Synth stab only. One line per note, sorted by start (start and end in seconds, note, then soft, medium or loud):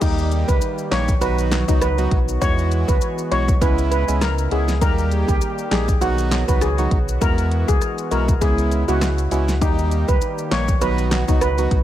0.01 0.57 G3 loud
0.01 0.57 A#3 medium
0.01 0.57 D#4 medium
0.01 0.57 G4 loud
0.91 1.14 G3 medium
0.91 1.14 A#3 medium
0.91 1.14 D#4 medium
0.91 1.14 G4 medium
1.21 1.64 F#3 loud
1.21 1.64 B3 medium
1.21 1.64 D#4 medium
1.21 1.64 F#4 loud
1.68 1.89 F#3 medium
1.68 1.89 B3 medium
1.68 1.89 D#4 medium
1.68 1.89 F#4 medium
1.98 2.19 F#3 medium
1.98 2.19 B3 medium
1.98 2.19 D#4 medium
1.98 2.19 F#4 medium
2.41 2.97 G#3 loud
2.41 2.97 B3 medium
2.41 2.97 E4 medium
2.41 2.97 F#4 loud
3.31 3.54 G#3 medium
3.31 3.54 B3 medium
3.31 3.54 E4 medium
3.31 3.54 F#4 medium
3.61 4.04 G#3 medium
3.61 4.04 B3 medium
3.61 4.04 C#4 medium
3.61 4.04 E4 loud
4.08 4.29 G#3 medium
4.08 4.29 B3 medium
4.08 4.29 C#4 medium
4.08 4.29 E4 medium
4.51 4.74 G#3 medium
4.51 4.74 B3 medium
4.51 4.74 C#4 medium
4.51 4.74 E4 medium
4.81 5.37 G3 medium
4.81 5.37 A#3 medium
4.81 5.37 D#4 medium
4.81 5.37 G4 loud
5.71 5.94 G3 medium
5.71 5.94 A#3 medium
5.71 5.94 D#4 medium
5.71 5.94 G4 medium
6.01 6.44 F#3 medium
6.01 6.44 B3 medium
6.01 6.44 D#4 medium
6.01 6.44 F#4 loud
6.48 6.69 F#3 medium
6.48 6.69 B3 medium
6.48 6.69 D#4 medium
6.48 6.69 F#4 medium
6.78 6.99 F#3 medium
6.78 6.99 B3 medium
6.78 6.99 D#4 medium
6.78 6.99 F#4 medium
7.21 7.77 G#3 medium
7.21 7.77 B3 medium
7.21 7.77 E4 medium
7.21 7.77 F#4 loud
8.11 8.34 G#3 medium
8.11 8.34 B3 medium
8.11 8.34 E4 medium
8.11 8.34 F#4 medium
8.41 8.84 G#3 loud
8.41 8.84 B3 medium
8.41 8.84 C#4 medium
8.41 8.84 E4 loud
8.88 9.09 G#3 medium
8.88 9.09 B3 medium
8.88 9.09 C#4 medium
8.88 9.09 E4 medium
9.31 9.54 G#3 medium
9.31 9.54 B3 medium
9.31 9.54 C#4 medium
9.31 9.54 E4 medium
9.61 10.17 G3 loud
9.61 10.17 A#3 medium
9.61 10.17 D#4 medium
9.61 10.17 G4 loud
10.51 10.74 G3 medium
10.51 10.74 A#3 medium
10.51 10.74 D#4 medium
10.51 10.74 G4 medium
10.81 11.24 F#3 loud
10.81 11.24 B3 medium
10.81 11.24 D#4 medium
10.81 11.24 F#4 loud
11.28 11.49 F#3 medium
11.28 11.49 B3 medium
11.28 11.49 D#4 medium
11.28 11.49 F#4 medium
11.58 11.79 F#3 medium
11.58 11.79 B3 medium
11.58 11.79 D#4 medium
11.58 11.79 F#4 medium